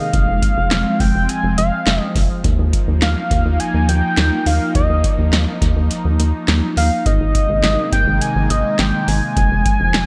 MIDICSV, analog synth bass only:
0, 0, Header, 1, 2, 480
1, 0, Start_track
1, 0, Tempo, 576923
1, 113, Time_signature, 4, 2, 24, 8
1, 8370, End_track
2, 0, Start_track
2, 0, Title_t, "Analog synth bass"
2, 0, Program_c, 0, 38
2, 113, Note_on_c, 0, 29, 106
2, 223, Note_off_c, 0, 29, 0
2, 231, Note_on_c, 0, 29, 99
2, 342, Note_off_c, 0, 29, 0
2, 473, Note_on_c, 0, 29, 98
2, 583, Note_off_c, 0, 29, 0
2, 593, Note_on_c, 0, 29, 107
2, 703, Note_off_c, 0, 29, 0
2, 832, Note_on_c, 0, 29, 102
2, 943, Note_off_c, 0, 29, 0
2, 953, Note_on_c, 0, 29, 100
2, 1063, Note_off_c, 0, 29, 0
2, 1194, Note_on_c, 0, 29, 105
2, 1303, Note_off_c, 0, 29, 0
2, 1313, Note_on_c, 0, 29, 108
2, 1423, Note_off_c, 0, 29, 0
2, 1552, Note_on_c, 0, 29, 110
2, 1663, Note_off_c, 0, 29, 0
2, 1792, Note_on_c, 0, 29, 106
2, 1903, Note_off_c, 0, 29, 0
2, 2033, Note_on_c, 0, 39, 106
2, 2143, Note_off_c, 0, 39, 0
2, 2153, Note_on_c, 0, 39, 104
2, 2263, Note_off_c, 0, 39, 0
2, 2393, Note_on_c, 0, 39, 91
2, 2503, Note_off_c, 0, 39, 0
2, 2514, Note_on_c, 0, 39, 109
2, 2623, Note_off_c, 0, 39, 0
2, 2753, Note_on_c, 0, 39, 104
2, 2863, Note_off_c, 0, 39, 0
2, 2873, Note_on_c, 0, 39, 95
2, 2983, Note_off_c, 0, 39, 0
2, 3113, Note_on_c, 0, 39, 89
2, 3223, Note_off_c, 0, 39, 0
2, 3232, Note_on_c, 0, 39, 103
2, 3343, Note_off_c, 0, 39, 0
2, 3473, Note_on_c, 0, 39, 113
2, 3583, Note_off_c, 0, 39, 0
2, 3712, Note_on_c, 0, 39, 101
2, 3823, Note_off_c, 0, 39, 0
2, 3953, Note_on_c, 0, 39, 105
2, 4063, Note_off_c, 0, 39, 0
2, 4073, Note_on_c, 0, 39, 93
2, 4183, Note_off_c, 0, 39, 0
2, 4313, Note_on_c, 0, 39, 102
2, 4423, Note_off_c, 0, 39, 0
2, 4433, Note_on_c, 0, 39, 111
2, 4543, Note_off_c, 0, 39, 0
2, 4673, Note_on_c, 0, 39, 94
2, 4783, Note_off_c, 0, 39, 0
2, 4793, Note_on_c, 0, 39, 95
2, 4903, Note_off_c, 0, 39, 0
2, 5033, Note_on_c, 0, 39, 97
2, 5143, Note_off_c, 0, 39, 0
2, 5153, Note_on_c, 0, 39, 94
2, 5263, Note_off_c, 0, 39, 0
2, 5393, Note_on_c, 0, 39, 107
2, 5503, Note_off_c, 0, 39, 0
2, 5633, Note_on_c, 0, 39, 102
2, 5743, Note_off_c, 0, 39, 0
2, 5873, Note_on_c, 0, 32, 114
2, 5983, Note_off_c, 0, 32, 0
2, 5993, Note_on_c, 0, 32, 97
2, 6103, Note_off_c, 0, 32, 0
2, 6234, Note_on_c, 0, 32, 99
2, 6343, Note_off_c, 0, 32, 0
2, 6353, Note_on_c, 0, 32, 101
2, 6463, Note_off_c, 0, 32, 0
2, 6593, Note_on_c, 0, 32, 92
2, 6703, Note_off_c, 0, 32, 0
2, 6713, Note_on_c, 0, 32, 107
2, 6823, Note_off_c, 0, 32, 0
2, 6953, Note_on_c, 0, 32, 106
2, 7063, Note_off_c, 0, 32, 0
2, 7073, Note_on_c, 0, 32, 101
2, 7183, Note_off_c, 0, 32, 0
2, 7313, Note_on_c, 0, 32, 104
2, 7423, Note_off_c, 0, 32, 0
2, 7553, Note_on_c, 0, 32, 109
2, 7663, Note_off_c, 0, 32, 0
2, 7793, Note_on_c, 0, 29, 110
2, 7903, Note_off_c, 0, 29, 0
2, 7913, Note_on_c, 0, 29, 102
2, 8023, Note_off_c, 0, 29, 0
2, 8152, Note_on_c, 0, 29, 96
2, 8263, Note_off_c, 0, 29, 0
2, 8273, Note_on_c, 0, 29, 103
2, 8370, Note_off_c, 0, 29, 0
2, 8370, End_track
0, 0, End_of_file